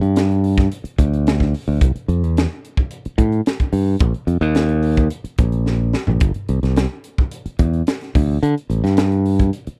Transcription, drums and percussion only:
0.03 closed hi-hat soft
0.16 snare medium
0.16 closed hi-hat medium
0.31 closed hi-hat soft
0.44 open hi-hat medium
0.58 kick medium
0.58 snare soft
0.58 closed hi-hat soft
0.72 closed hi-hat medium
0.85 closed hi-hat soft
0.98 kick medium
0.98 closed hi-hat medium
1.14 closed hi-hat soft
1.27 snare loud
1.27 closed hi-hat medium
1.40 kick medium
1.40 snare soft
1.54 open hi-hat medium
1.81 kick loud
1.81 closed hi-hat medium
1.96 closed hi-hat soft
2.09 closed hi-hat medium
2.24 closed hi-hat soft
2.37 snare loud
2.37 closed hi-hat medium
2.65 closed hi-hat medium
2.77 kick medium
2.91 closed hi-hat medium
3.05 closed hi-hat soft
3.18 kick medium
3.18 closed hi-hat medium
3.32 closed hi-hat soft
3.46 snare medium
3.46 closed hi-hat medium
3.60 kick medium
3.60 closed hi-hat soft
3.73 open hi-hat medium
3.99 kick loud
3.99 closed hi-hat medium
4.14 closed hi-hat soft
4.28 closed hi-hat soft
4.42 closed hi-hat soft
4.55 snare medium
4.55 closed hi-hat medium
4.69 closed hi-hat soft
4.83 open hi-hat medium
4.97 kick medium
4.97 closed hi-hat soft
5.10 closed hi-hat medium
5.25 closed hi-hat soft
5.38 kick medium
5.38 closed hi-hat medium
5.52 closed hi-hat soft
5.66 snare soft
5.93 snare medium
6.07 floor tom medium
6.20 kick medium
6.20 closed hi-hat medium
6.34 closed hi-hat soft
6.49 closed hi-hat medium
6.63 snare soft
6.63 closed hi-hat soft
6.76 snare medium
6.76 closed hi-hat medium
7.04 closed hi-hat medium
7.18 kick medium
7.31 closed hi-hat medium
7.46 closed hi-hat soft
7.59 kick medium
7.59 closed hi-hat medium
7.73 closed hi-hat soft
7.87 snare loud
7.87 closed hi-hat medium
8.01 snare soft
8.01 closed hi-hat soft
8.15 kick medium
8.15 open hi-hat medium
8.43 closed hi-hat medium
8.58 closed hi-hat soft
8.70 closed hi-hat medium
8.85 snare soft
8.85 closed hi-hat soft
8.97 snare loud
8.97 closed hi-hat medium
9.12 closed hi-hat soft
9.26 open hi-hat medium
9.39 kick medium
9.39 closed hi-hat soft
9.53 closed hi-hat medium
9.67 closed hi-hat soft

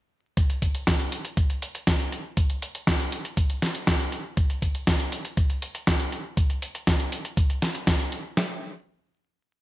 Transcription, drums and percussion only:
0.37 kick loud
0.37 closed hi-hat medium
0.50 closed hi-hat soft
0.62 kick medium
0.62 closed hi-hat medium
0.75 closed hi-hat soft
0.87 kick loud
0.87 snare loud
0.87 closed hi-hat medium
1.00 closed hi-hat soft
1.12 closed hi-hat medium
1.25 closed hi-hat soft
1.37 kick loud
1.37 closed hi-hat medium
1.50 closed hi-hat soft
1.62 closed hi-hat medium
1.75 closed hi-hat soft
1.87 kick loud
1.87 snare loud
1.87 closed hi-hat medium
2.00 closed hi-hat soft
2.12 closed hi-hat soft
2.37 kick loud
2.37 closed hi-hat medium
2.50 closed hi-hat soft
2.62 closed hi-hat medium
2.75 closed hi-hat soft
2.87 kick loud
2.87 snare loud
2.87 closed hi-hat medium
3.00 closed hi-hat soft
3.12 closed hi-hat medium
3.25 closed hi-hat soft
3.37 kick loud
3.37 closed hi-hat medium
3.50 closed hi-hat soft
3.62 snare medium
3.62 closed hi-hat medium
3.75 closed hi-hat soft
3.87 kick loud
3.87 snare loud
3.87 closed hi-hat medium
4.00 closed hi-hat soft
4.12 closed hi-hat soft
4.37 kick loud
4.37 closed hi-hat medium
4.50 closed hi-hat soft
4.62 kick medium
4.62 closed hi-hat medium
4.75 closed hi-hat soft
4.87 kick loud
4.87 snare loud
4.87 closed hi-hat medium
5.00 closed hi-hat soft
5.12 closed hi-hat medium
5.25 closed hi-hat soft
5.37 kick loud
5.37 closed hi-hat medium
5.50 closed hi-hat soft
5.62 closed hi-hat medium
5.75 closed hi-hat soft
5.87 kick loud
5.87 snare loud
5.87 closed hi-hat medium
6.00 closed hi-hat soft
6.12 closed hi-hat soft
6.37 kick loud
6.37 closed hi-hat medium
6.50 closed hi-hat soft
6.62 closed hi-hat medium
6.75 closed hi-hat soft
6.87 kick loud
6.87 snare loud
6.87 closed hi-hat medium
7.00 closed hi-hat soft
7.12 closed hi-hat medium
7.25 closed hi-hat soft
7.37 kick loud
7.37 closed hi-hat medium
7.50 closed hi-hat soft
7.62 snare medium
7.62 closed hi-hat medium
7.75 closed hi-hat soft
7.87 kick loud
7.87 snare loud
7.87 closed hi-hat medium
8.00 closed hi-hat soft
8.12 closed hi-hat soft
8.37 snare loud

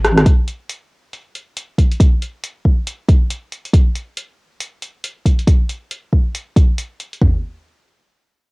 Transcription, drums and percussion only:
0.04 cross-stick medium
0.04 closed hi-hat soft
0.17 cross-stick medium
0.17 closed hi-hat soft
0.26 kick loud
0.26 closed hi-hat medium
0.48 closed hi-hat soft
0.70 closed hi-hat medium
1.13 closed hi-hat medium
1.35 closed hi-hat soft
1.57 closed hi-hat medium
1.78 kick medium
1.78 closed hi-hat soft
1.91 closed hi-hat soft
2.00 kick loud
2.00 closed hi-hat medium
2.22 closed hi-hat soft
2.44 closed hi-hat medium
2.65 kick medium
2.87 closed hi-hat medium
3.08 kick medium
3.08 closed hi-hat soft
3.30 closed hi-hat medium
3.52 closed hi-hat soft
3.65 closed hi-hat soft
3.74 kick loud
3.74 closed hi-hat medium
3.96 closed hi-hat medium
4.18 closed hi-hat medium
4.61 closed hi-hat medium
4.83 closed hi-hat soft
5.04 closed hi-hat medium
5.26 kick medium
5.26 closed hi-hat soft
5.39 closed hi-hat soft
5.48 kick loud
5.48 closed hi-hat medium
5.69 closed hi-hat soft
5.91 closed hi-hat medium
6.13 kick medium
6.35 closed hi-hat medium
6.56 kick loud
6.56 closed hi-hat medium
6.78 closed hi-hat medium
7.00 closed hi-hat soft
7.13 closed hi-hat soft
7.21 kick loud
7.21 floor tom medium

